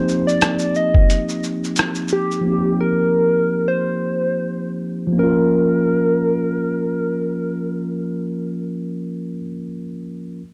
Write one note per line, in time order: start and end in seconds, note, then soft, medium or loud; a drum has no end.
0.00 2.38 F3 medium
0.00 2.39 A#3 medium
0.00 2.40 C4 medium
0.00 2.42 D#4 medium
0.00 2.43 G4 medium
0.00 0.29 C5 loud
0.09 shaker soft
0.27 0.78 D5 loud
0.27 shaker soft
0.41 cross-stick medium
0.41 closed hi-hat medium
0.41 shaker medium
0.59 shaker medium
0.75 1.44 D#5 medium
0.75 shaker soft
0.94 kick medium
1.10 closed hi-hat medium
1.10 shaker medium
1.29 shaker soft
1.43 shaker soft
1.64 shaker medium
1.76 cross-stick loud
1.76 closed hi-hat medium
1.76 shaker medium
1.95 shaker soft
2.08 shaker soft
2.13 2.82 G4 medium
2.31 shaker soft
2.41 5.06 F3 medium
2.41 5.11 A#3 medium
2.46 5.15 C4 medium
2.46 5.16 D#4 medium
2.52 5.17 G4 medium
2.81 3.70 A#4 loud
3.68 4.70 C5 loud
5.07 9.31 F3 medium
5.13 9.34 A#3 medium
5.18 9.37 C#4 medium
5.18 8.67 A#4 loud
5.24 9.40 F4 medium
5.29 9.42 A#4 medium